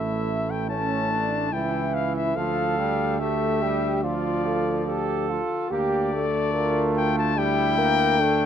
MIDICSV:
0, 0, Header, 1, 6, 480
1, 0, Start_track
1, 0, Key_signature, -1, "minor"
1, 0, Tempo, 834492
1, 1360, Time_signature, 4, 2, 24, 8
1, 4864, End_track
2, 0, Start_track
2, 0, Title_t, "Cornet"
2, 0, Program_c, 0, 56
2, 0, Note_on_c, 0, 76, 92
2, 289, Note_on_c, 0, 79, 79
2, 298, Note_off_c, 0, 76, 0
2, 396, Note_off_c, 0, 79, 0
2, 399, Note_on_c, 0, 81, 94
2, 878, Note_on_c, 0, 79, 90
2, 886, Note_off_c, 0, 81, 0
2, 1117, Note_on_c, 0, 77, 88
2, 1125, Note_off_c, 0, 79, 0
2, 1237, Note_off_c, 0, 77, 0
2, 1240, Note_on_c, 0, 76, 90
2, 1359, Note_on_c, 0, 77, 95
2, 1367, Note_off_c, 0, 76, 0
2, 1838, Note_on_c, 0, 76, 101
2, 1847, Note_off_c, 0, 77, 0
2, 2320, Note_off_c, 0, 76, 0
2, 2324, Note_on_c, 0, 74, 96
2, 3029, Note_off_c, 0, 74, 0
2, 3280, Note_on_c, 0, 74, 101
2, 3976, Note_off_c, 0, 74, 0
2, 4006, Note_on_c, 0, 79, 102
2, 4119, Note_off_c, 0, 79, 0
2, 4132, Note_on_c, 0, 81, 99
2, 4246, Note_on_c, 0, 79, 120
2, 4254, Note_off_c, 0, 81, 0
2, 4864, Note_off_c, 0, 79, 0
2, 4864, End_track
3, 0, Start_track
3, 0, Title_t, "French horn"
3, 0, Program_c, 1, 60
3, 0, Note_on_c, 1, 64, 61
3, 237, Note_off_c, 1, 64, 0
3, 399, Note_on_c, 1, 61, 64
3, 636, Note_on_c, 1, 62, 67
3, 645, Note_off_c, 1, 61, 0
3, 876, Note_on_c, 1, 64, 69
3, 884, Note_off_c, 1, 62, 0
3, 1359, Note_off_c, 1, 64, 0
3, 1366, Note_on_c, 1, 65, 75
3, 1597, Note_off_c, 1, 65, 0
3, 1603, Note_on_c, 1, 67, 70
3, 1836, Note_off_c, 1, 67, 0
3, 1846, Note_on_c, 1, 69, 72
3, 2085, Note_on_c, 1, 67, 75
3, 2094, Note_off_c, 1, 69, 0
3, 2322, Note_on_c, 1, 65, 80
3, 2331, Note_off_c, 1, 67, 0
3, 2564, Note_on_c, 1, 69, 76
3, 2572, Note_off_c, 1, 65, 0
3, 2802, Note_off_c, 1, 69, 0
3, 2805, Note_on_c, 1, 67, 72
3, 3046, Note_on_c, 1, 65, 80
3, 3055, Note_off_c, 1, 67, 0
3, 3285, Note_on_c, 1, 67, 87
3, 3294, Note_off_c, 1, 65, 0
3, 3522, Note_off_c, 1, 67, 0
3, 3527, Note_on_c, 1, 69, 78
3, 3755, Note_off_c, 1, 69, 0
3, 3759, Note_on_c, 1, 70, 86
3, 4075, Note_off_c, 1, 70, 0
3, 4239, Note_on_c, 1, 67, 90
3, 4459, Note_off_c, 1, 67, 0
3, 4475, Note_on_c, 1, 70, 85
3, 4712, Note_on_c, 1, 69, 81
3, 4721, Note_off_c, 1, 70, 0
3, 4864, Note_off_c, 1, 69, 0
3, 4864, End_track
4, 0, Start_track
4, 0, Title_t, "Flugelhorn"
4, 0, Program_c, 2, 56
4, 0, Note_on_c, 2, 64, 57
4, 396, Note_on_c, 2, 61, 66
4, 405, Note_off_c, 2, 64, 0
4, 638, Note_on_c, 2, 62, 67
4, 647, Note_off_c, 2, 61, 0
4, 876, Note_on_c, 2, 64, 64
4, 885, Note_off_c, 2, 62, 0
4, 1353, Note_off_c, 2, 64, 0
4, 1356, Note_on_c, 2, 69, 67
4, 1838, Note_on_c, 2, 67, 67
4, 1847, Note_off_c, 2, 69, 0
4, 2316, Note_off_c, 2, 67, 0
4, 2319, Note_on_c, 2, 65, 68
4, 2790, Note_off_c, 2, 65, 0
4, 2801, Note_on_c, 2, 69, 76
4, 3272, Note_off_c, 2, 69, 0
4, 3280, Note_on_c, 2, 67, 71
4, 3596, Note_off_c, 2, 67, 0
4, 3758, Note_on_c, 2, 65, 70
4, 4213, Note_off_c, 2, 65, 0
4, 4237, Note_on_c, 2, 64, 81
4, 4712, Note_on_c, 2, 62, 79
4, 4720, Note_off_c, 2, 64, 0
4, 4864, Note_off_c, 2, 62, 0
4, 4864, End_track
5, 0, Start_track
5, 0, Title_t, "Trombone"
5, 0, Program_c, 3, 57
5, 0, Note_on_c, 3, 57, 61
5, 376, Note_off_c, 3, 57, 0
5, 400, Note_on_c, 3, 57, 63
5, 870, Note_off_c, 3, 57, 0
5, 880, Note_on_c, 3, 52, 63
5, 1362, Note_on_c, 3, 53, 70
5, 1370, Note_off_c, 3, 52, 0
5, 1603, Note_on_c, 3, 55, 70
5, 1611, Note_off_c, 3, 53, 0
5, 1839, Note_on_c, 3, 57, 69
5, 1848, Note_off_c, 3, 55, 0
5, 2086, Note_on_c, 3, 55, 75
5, 2094, Note_off_c, 3, 57, 0
5, 2319, Note_off_c, 3, 55, 0
5, 2323, Note_on_c, 3, 53, 72
5, 3110, Note_off_c, 3, 53, 0
5, 3284, Note_on_c, 3, 58, 76
5, 3505, Note_off_c, 3, 58, 0
5, 3530, Note_on_c, 3, 57, 80
5, 4240, Note_on_c, 3, 55, 77
5, 4248, Note_off_c, 3, 57, 0
5, 4474, Note_on_c, 3, 58, 77
5, 4483, Note_off_c, 3, 55, 0
5, 4715, Note_on_c, 3, 57, 79
5, 4724, Note_off_c, 3, 58, 0
5, 4864, Note_off_c, 3, 57, 0
5, 4864, End_track
6, 0, Start_track
6, 0, Title_t, "Tuba"
6, 0, Program_c, 4, 58
6, 0, Note_on_c, 4, 33, 62
6, 877, Note_on_c, 4, 37, 61
6, 886, Note_off_c, 4, 33, 0
6, 1356, Note_off_c, 4, 37, 0
6, 1359, Note_on_c, 4, 38, 69
6, 3101, Note_off_c, 4, 38, 0
6, 3284, Note_on_c, 4, 38, 75
6, 4864, Note_off_c, 4, 38, 0
6, 4864, End_track
0, 0, End_of_file